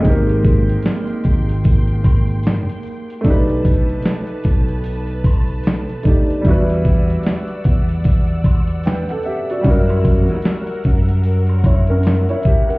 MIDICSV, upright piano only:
0, 0, Header, 1, 2, 480
1, 0, Start_track
1, 0, Tempo, 800000
1, 29, Time_signature, 4, 2, 24, 8
1, 7670, End_track
2, 0, Start_track
2, 0, Title_t, "Upright piano"
2, 0, Program_c, 0, 0
2, 0, Control_c, 0, 64, 127
2, 0, Note_on_c, 0, 75, 59
2, 3, Note_on_c, 0, 56, 82
2, 17, Note_on_c, 0, 60, 78
2, 30, Note_on_c, 0, 63, 68
2, 37, Control_c, 0, 64, 0
2, 44, Note_on_c, 0, 67, 75
2, 59, Note_on_c, 0, 70, 93
2, 135, Control_c, 0, 64, 127
2, 165, Note_off_c, 0, 75, 0
2, 1912, Note_off_c, 0, 56, 0
2, 1919, Note_off_c, 0, 60, 0
2, 1925, Note_off_c, 0, 63, 0
2, 1926, Note_on_c, 0, 57, 81
2, 1932, Note_off_c, 0, 67, 0
2, 1940, Note_off_c, 0, 70, 0
2, 1941, Note_on_c, 0, 62, 78
2, 1954, Note_on_c, 0, 63, 74
2, 1956, Control_c, 0, 64, 0
2, 1967, Note_on_c, 0, 67, 73
2, 1981, Note_on_c, 0, 71, 90
2, 2053, Control_c, 0, 64, 127
2, 3593, Note_off_c, 0, 57, 0
2, 3601, Note_off_c, 0, 62, 0
2, 3607, Note_off_c, 0, 63, 0
2, 3614, Note_off_c, 0, 67, 0
2, 3620, Note_on_c, 0, 57, 56
2, 3621, Note_off_c, 0, 71, 0
2, 3625, Note_on_c, 0, 62, 56
2, 3632, Note_on_c, 0, 63, 50
2, 3640, Note_on_c, 0, 67, 54
2, 3648, Note_on_c, 0, 74, 62
2, 3848, Note_on_c, 0, 55, 80
2, 3852, Note_off_c, 0, 62, 0
2, 3861, Note_on_c, 0, 62, 77
2, 3864, Note_off_c, 0, 57, 0
2, 3871, Note_off_c, 0, 63, 0
2, 3874, Note_off_c, 0, 67, 0
2, 3875, Note_on_c, 0, 64, 71
2, 3876, Control_c, 0, 64, 0
2, 3878, Note_off_c, 0, 74, 0
2, 3890, Note_on_c, 0, 66, 71
2, 3903, Note_on_c, 0, 71, 91
2, 3998, Control_c, 0, 64, 127
2, 5296, Note_off_c, 0, 66, 0
2, 5302, Note_off_c, 0, 71, 0
2, 5312, Note_on_c, 0, 79, 66
2, 5317, Note_on_c, 0, 71, 50
2, 5450, Note_off_c, 0, 79, 0
2, 5452, Note_off_c, 0, 71, 0
2, 5462, Note_on_c, 0, 78, 70
2, 5466, Note_on_c, 0, 69, 60
2, 5548, Note_off_c, 0, 78, 0
2, 5550, Note_off_c, 0, 69, 0
2, 5553, Note_on_c, 0, 76, 71
2, 5558, Note_on_c, 0, 67, 63
2, 5690, Note_off_c, 0, 76, 0
2, 5693, Note_off_c, 0, 67, 0
2, 5701, Note_on_c, 0, 74, 65
2, 5705, Note_on_c, 0, 66, 52
2, 5754, Note_off_c, 0, 55, 0
2, 5761, Note_off_c, 0, 62, 0
2, 5766, Note_on_c, 0, 55, 80
2, 5768, Note_off_c, 0, 64, 0
2, 5780, Note_on_c, 0, 61, 78
2, 5794, Note_on_c, 0, 64, 73
2, 5797, Control_c, 0, 64, 0
2, 5800, Note_off_c, 0, 66, 0
2, 5809, Note_on_c, 0, 66, 76
2, 5823, Note_on_c, 0, 70, 96
2, 5898, Control_c, 0, 64, 127
2, 5926, Note_off_c, 0, 74, 0
2, 6961, Note_off_c, 0, 61, 0
2, 6968, Note_off_c, 0, 64, 0
2, 6975, Note_off_c, 0, 66, 0
2, 6982, Note_off_c, 0, 70, 0
2, 6995, Note_on_c, 0, 73, 65
2, 6996, Note_on_c, 0, 64, 57
2, 7131, Note_off_c, 0, 73, 0
2, 7132, Note_off_c, 0, 64, 0
2, 7139, Note_on_c, 0, 70, 68
2, 7142, Note_on_c, 0, 61, 64
2, 7365, Note_off_c, 0, 70, 0
2, 7367, Note_off_c, 0, 61, 0
2, 7378, Note_on_c, 0, 73, 64
2, 7382, Note_on_c, 0, 64, 58
2, 7434, Note_off_c, 0, 55, 0
2, 7466, Note_off_c, 0, 73, 0
2, 7468, Note_off_c, 0, 64, 0
2, 7471, Note_on_c, 0, 76, 68
2, 7474, Note_on_c, 0, 67, 57
2, 7609, Note_off_c, 0, 76, 0
2, 7611, Note_off_c, 0, 67, 0
2, 7613, Note_on_c, 0, 78, 62
2, 7617, Note_on_c, 0, 70, 55
2, 7670, Note_off_c, 0, 70, 0
2, 7670, Note_off_c, 0, 78, 0
2, 7670, End_track
0, 0, End_of_file